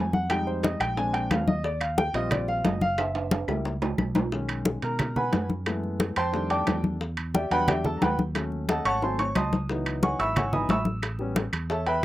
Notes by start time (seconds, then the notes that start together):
Already playing: F2 G#3 D#4 F#4 G#5
0.13 F#5, high bongo, high conga
0.30 G3 G#3 D#4 G5, high bongo, high conga, high timbale, claves
0.47 C5, high conga
0.63 D#5, high bongo, high conga, high timbale, low timbale
0.80 A#1 G5, high bongo, high conga, high timbale, claves
0.97 G#3 C4 D4 G#5, high bongo, high conga
1.14 G5, high bongo, high conga, high timbale
1.30 D#2 F5, high bongo, low bongo, high conga, high timbale, low timbale, claves
1.48 D#5, high bongo, high conga
1.64 D5, high bongo, high conga
1.81 F5, high conga, high timbale, claves
1.98 G5, high bongo, high conga, low timbale
2.14 A#1 G3 C4 F4 D#5, high bongo, high conga, high timbale
2.31 D5, high bongo, high conga, low conga, high timbale, claves
2.48 F5, high bongo, high conga
2.64 F#1 D#5, high bongo, low bongo, high conga, high timbale, low timbale
2.81 F5, high bongo, high conga
2.98 E5, high bongo, high conga, high timbale, claves
3.15 high conga, high timbale
3.31 high bongo, high conga, high timbale
3.48 C#2 G3 A#3 E4, high bongo, high conga, low timbale, claves
3.65 low bongo, high conga
3.82 low bongo, high conga, low timbale
3.98 B1, high conga, low timbale, claves
4.15 low bongo, high conga, low timbale
4.32 D#3 G#3 C#4, high bongo, high conga
4.49 high conga, high timbale, claves
4.65 high bongo, high conga, low timbale
4.82 B2 A#4 A#5, high bongo, high conga, high timbale
4.99 high bongo, high conga, low conga, high timbale, claves
5.16 B4 F#5 G#5 B5, high bongo, high conga, low conga
5.32 F#2, high bongo, low bongo, high conga, high timbale, low timbale
5.50 high bongo, high conga
5.66 E3 G#3 A3 B3, high bongo, high conga, high timbale, claves
5.83 high conga
6.00 high bongo, high conga, high timbale, low timbale
6.16 F2 C5 G5 A5 C6, high bongo, high conga, high timbale, claves
6.32 D#3 G3 A3 D4, high bongo, high conga
6.50 D5 G5 A5 D6, high bongo, high conga, high timbale
6.67 E2, high bongo, low bongo, high conga, high timbale, low timbale, claves
6.84 high bongo, high conga
7.01 high bongo, high conga
7.17 high conga, high timbale, claves
7.34 G4 D5 E5 G5, high bongo, high conga, low timbale
7.51 E2 F#3 G3 D4 B4 F#5 G5 B5, high bongo, high conga, high timbale
7.68 G4 D5 E5 G5, high bongo, high conga, low conga, high timbale, claves
7.85 A4 A5, high bongo, high conga, low conga
7.97 A#5
8.01 D#2 B4 F#5 G5 B5, high bongo, low bongo, high conga, high timbale, low timbale
8.19 high bongo, high conga
8.35 F#3 A3 C#4, high bongo, high conga, high timbale, claves
8.52 high conga
8.69 A4 D#5 F#5 A5, high bongo, high conga, high timbale, low timbale
8.85 G#1 C#5 F#5 A5 C#6, high conga, high timbale, claves
9.02 F#3 A3 C4 C5 G#5 A5 C6, low bongo, high conga
9.19 C#5 C#6, low bongo, high conga, high timbale
9.35 C#2 D#5 A5 C6 D#6, low bongo, high conga, high timbale, low timbale, claves
9.53 low bongo, high conga
9.69 E3 F#3 B3 D#4, high bongo, high conga
9.86 high conga, high timbale, claves
10.03 C#5 F#5 G#5 C#6, high bongo, high conga, low timbale
10.19 G#1 E5 B5 C#6 E6, high bongo, high conga, high timbale
10.36 C#5 F#5 G#5 C#6, high bongo, high conga, low conga, high timbale, claves
10.52 E3 F#3 B3 D#4 D#5 G#5 B5 D#6, high bongo, high conga, low conga
10.69 A1 E5 B5 C#6 E6, high bongo, low bongo, high conga, high timbale, low timbale
10.85 high bongo, high conga
11.02 high bongo, high conga, high timbale, claves
11.19 G3 B3 C#4, high conga
11.36 high bongo, high conga, high timbale, low timbale
11.53 E2, high bongo, high conga, high timbale, claves
11.70 A4 C#5 E5 A5, high bongo, high conga
11.86 B4 E5 G5 B5, high bongo, high conga, high timbale